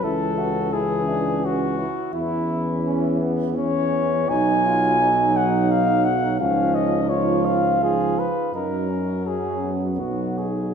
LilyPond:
<<
  \new Staff \with { instrumentName = "Cornet" } { \time 3/4 \key cis \phrygian \tempo 4 = 85 a'4 gis'4 fis'4 | e'4. r8 cis''4 | \key fis \major gis''4. fis''8 eis''8 fis''8 | eis''8 dis''8 cis''8 eis''8 gis'8 b'8 |
ais'4 gis'8 r8 fis'8 gis'8 | }
  \new Staff \with { instrumentName = "Flugelhorn" } { \time 3/4 \key cis \phrygian e'8 fis'8 e'8 d'8 cis'8 e'8 | e'8 r8 cis'8 b8 cis'4 | \key fis \major dis'8 eis'8 dis'2 | cis'4 eis'2 |
dis'8 cis'8 cis'8 b4 r8 | }
  \new Staff \with { instrumentName = "Euphonium" } { \time 3/4 \key cis \phrygian cis'4 cis'4. r8 | cis'2 cis'4 | \key fis \major dis'2. | dis'4 dis'4 dis'8 r8 |
cis'2 dis'4 | }
  \new Staff \with { instrumentName = "Trombone" } { \clef bass \time 3/4 \key cis \phrygian e4 e4. r8 | e2 e4 | \key fis \major fis2. | eis4 eis4 eis8 r8 |
fis2 fis4 | }
  \new Staff \with { instrumentName = "Tuba" } { \clef bass \time 3/4 \key cis \phrygian cis,2~ cis,8 r8 | e,2. | \key fis \major b,,2. | cis,2~ cis,8 r8 |
fis,2 b,,4 | }
>>